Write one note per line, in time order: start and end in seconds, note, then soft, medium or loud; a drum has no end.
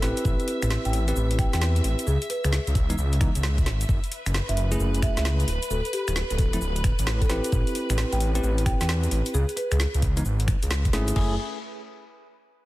0.00 0.13 A1 medium
0.00 1.04 C4 loud
0.00 1.04 E4 medium
0.00 1.04 G4 medium
0.00 1.04 B4 loud
0.00 3.90 E5 medium
0.00 snare medium
0.00 open hi-hat loud
0.17 closed hi-hat medium
0.17 shaker medium
0.25 0.36 A1 loud
0.25 kick loud
0.25 shaker medium
0.40 closed hi-hat soft
0.40 shaker soft
0.48 open hi-hat loud
0.62 0.77 A1 medium
0.62 finger snap medium
0.62 closed hi-hat medium
0.62 shaker medium
0.70 snare loud
0.70 shaker medium
0.85 1.13 A1 medium
0.85 0.98 G5 medium
0.85 closed hi-hat soft
0.85 shaker soft
0.93 open hi-hat loud
1.08 2.06 C4 medium
1.08 2.06 E4 medium
1.08 2.06 G4 medium
1.08 2.06 B4 medium
1.08 closed hi-hat medium
1.08 shaker medium
1.16 1.47 A1 loud
1.16 shaker soft
1.31 closed hi-hat medium
1.31 shaker soft
1.39 1.48 G5 medium
1.39 finger snap medium
1.39 kick loud
1.39 open hi-hat loud
1.53 1.81 E2 loud
1.53 1.59 G5 medium
1.53 snare medium
1.53 closed hi-hat medium
1.53 shaker medium
1.61 snare loud
1.61 shaker medium
1.76 closed hi-hat soft
1.76 shaker soft
1.84 1.95 A1 medium
1.84 open hi-hat loud
1.99 closed hi-hat medium
1.99 shaker medium
2.07 2.18 C#2 loud
2.07 2.28 G#4 medium
2.07 shaker medium
2.22 closed hi-hat soft
2.22 shaker soft
2.30 2.42 B4 loud
2.30 open hi-hat loud
2.44 2.59 C#2 medium
2.44 3.07 G#4 loud
2.44 finger snap medium
2.44 closed hi-hat medium
2.44 shaker medium
2.53 snare loud
2.53 shaker medium
2.67 2.94 C#2 medium
2.67 closed hi-hat medium
2.67 shaker soft
2.75 kick loud
2.75 open hi-hat loud
2.90 2.95 E3 medium
2.90 2.95 G#3 medium
2.90 2.95 B3 medium
2.90 2.95 D#4 medium
2.90 closed hi-hat medium
2.90 shaker medium
2.98 3.29 C#2 loud
2.98 shaker medium
3.13 closed hi-hat medium
3.13 shaker soft
3.21 3.30 E3 medium
3.21 3.30 G#3 medium
3.21 3.30 B3 medium
3.21 3.30 D#4 loud
3.21 finger snap medium
3.21 kick loud
3.21 open hi-hat loud
3.35 3.68 C#2 medium
3.35 closed hi-hat medium
3.35 shaker medium
3.43 snare loud
3.43 shaker medium
3.58 kick medium
3.58 closed hi-hat soft
3.58 shaker soft
3.66 3.84 G#1 medium
3.66 snare medium
3.66 open hi-hat loud
3.81 closed hi-hat medium
3.81 shaker medium
3.89 3.99 F#1 loud
3.89 11.17 B4 medium
3.89 kick loud
3.89 shaker medium
4.04 closed hi-hat soft
4.04 shaker soft
4.12 open hi-hat loud
4.26 4.41 F#1 medium
4.26 finger snap soft
4.26 closed hi-hat medium
4.26 shaker medium
4.34 snare loud
4.34 shaker medium
4.49 4.76 F#1 medium
4.49 4.62 E5 medium
4.49 closed hi-hat medium
4.49 shaker soft
4.57 open hi-hat loud
4.72 5.47 A3 medium
4.72 5.47 C#4 medium
4.72 5.47 E4 medium
4.72 5.47 G#4 medium
4.72 closed hi-hat medium
4.72 shaker medium
4.80 5.11 F#1 loud
4.80 shaker medium
4.95 closed hi-hat medium
4.95 shaker soft
5.02 5.12 E5 medium
5.02 finger snap medium
5.02 kick loud
5.02 open hi-hat loud
5.17 5.44 C#2 loud
5.17 5.22 E5 medium
5.17 snare medium
5.17 closed hi-hat medium
5.17 shaker medium
5.25 snare loud
5.25 shaker medium
5.40 closed hi-hat soft
5.40 shaker soft
5.48 5.59 D1 medium
5.48 open hi-hat loud
5.63 closed hi-hat medium
5.63 shaker medium
5.70 5.81 D1 loud
5.70 5.92 A4 medium
5.70 shaker medium
5.85 closed hi-hat soft
5.85 shaker soft
5.93 6.28 G4 medium
5.93 open hi-hat loud
6.08 6.23 D1 medium
6.08 finger snap medium
6.08 closed hi-hat medium
6.08 shaker medium
6.16 snare loud
6.16 shaker medium
6.30 6.58 D1 medium
6.30 6.36 A4 medium
6.30 closed hi-hat medium
6.30 shaker soft
6.38 6.48 A4 medium
6.38 kick loud
6.38 open hi-hat loud
6.53 6.58 F3 medium
6.53 6.58 A3 medium
6.53 6.58 C4 medium
6.53 6.58 E4 medium
6.53 closed hi-hat medium
6.53 shaker medium
6.61 6.92 D1 loud
6.61 shaker medium
6.76 closed hi-hat medium
6.76 shaker soft
6.84 finger snap medium
6.84 kick loud
6.84 open hi-hat loud
6.99 7.26 A1 loud
6.99 closed hi-hat medium
6.99 shaker medium
7.07 snare loud
7.07 shaker medium
7.22 7.36 A4 medium
7.22 kick medium
7.22 closed hi-hat soft
7.22 shaker soft
7.30 7.40 A1 medium
7.30 8.32 C4 loud
7.30 8.32 E4 medium
7.30 8.32 G4 medium
7.30 8.32 B4 loud
7.30 snare medium
7.30 open hi-hat loud
7.44 closed hi-hat medium
7.44 shaker medium
7.52 7.63 A1 loud
7.52 kick loud
7.52 shaker medium
7.67 closed hi-hat soft
7.67 shaker soft
7.75 open hi-hat loud
7.90 8.04 A1 medium
7.90 finger snap medium
7.90 closed hi-hat medium
7.90 shaker medium
7.98 snare loud
7.98 shaker medium
8.12 8.40 A1 medium
8.12 8.25 G5 medium
8.12 closed hi-hat medium
8.12 shaker soft
8.20 open hi-hat loud
8.35 9.33 C4 medium
8.35 9.33 E4 medium
8.35 9.33 G4 medium
8.35 9.33 B4 medium
8.35 closed hi-hat medium
8.35 shaker medium
8.43 8.74 A1 loud
8.43 shaker medium
8.58 closed hi-hat medium
8.58 shaker soft
8.66 8.75 G5 medium
8.66 finger snap medium
8.66 kick loud
8.66 open hi-hat loud
8.80 9.08 E2 loud
8.80 8.86 G5 medium
8.80 snare medium
8.80 closed hi-hat medium
8.80 shaker medium
8.89 snare loud
8.89 shaker medium
9.03 closed hi-hat soft
9.03 shaker soft
9.11 9.22 A1 medium
9.11 open hi-hat loud
9.26 closed hi-hat medium
9.26 shaker medium
9.34 9.45 C#2 loud
9.34 9.55 G#4 medium
9.34 shaker medium
9.49 closed hi-hat soft
9.49 shaker soft
9.57 9.69 B4 loud
9.57 open hi-hat loud
9.71 9.86 C#2 medium
9.71 10.34 G#4 medium
9.71 finger snap medium
9.71 closed hi-hat medium
9.71 shaker medium
9.80 snare loud
9.80 shaker medium
9.94 10.22 C#2 medium
9.94 closed hi-hat medium
9.94 shaker soft
10.02 kick loud
10.02 open hi-hat loud
10.17 10.22 E3 medium
10.17 10.22 G#3 medium
10.17 10.22 B3 medium
10.17 10.22 D#4 medium
10.17 closed hi-hat medium
10.17 shaker medium
10.25 10.56 G#1 loud
10.25 shaker soft
10.40 closed hi-hat medium
10.40 shaker soft
10.48 finger snap medium
10.48 kick loud
10.48 open hi-hat loud
10.63 10.90 C#2 medium
10.63 closed hi-hat medium
10.63 shaker medium
10.71 snare loud
10.71 shaker medium
10.85 kick medium
10.85 closed hi-hat soft
10.85 shaker soft
10.93 11.12 G#1 loud
10.93 11.15 A3 loud
10.93 11.15 C#4 medium
10.93 11.15 E4 medium
10.93 11.15 G#4 loud
10.93 snare medium
10.93 open hi-hat loud
11.08 closed hi-hat medium
11.08 shaker medium
11.16 11.37 F#1 loud
11.16 11.34 A3 medium
11.16 11.34 C#4 medium
11.16 11.34 E4 medium
11.16 11.34 G#4 loud
11.16 kick loud
11.16 crash medium